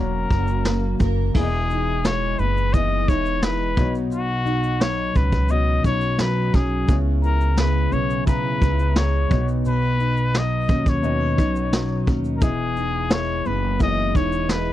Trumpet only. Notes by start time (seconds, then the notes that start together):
Already playing: A#4
1.37 G#4
2.06 C#5
2.39 B4
2.73 D#5
3.09 C#5
3.44 B4
4.13 F#4
4.82 C#5
5.16 B4
5.51 D#5
5.86 C#5
6.21 B4
6.55 G#4
7.24 A#4
7.59 B4
7.93 C#5
8.27 B4
8.97 C#5
9.68 B4
10.38 D#5
10.89 C#5
12.36 A#4
12.42 G#4
13.13 C#5
13.46 B4
13.82 D#5
14.17 C#5
14.51 B4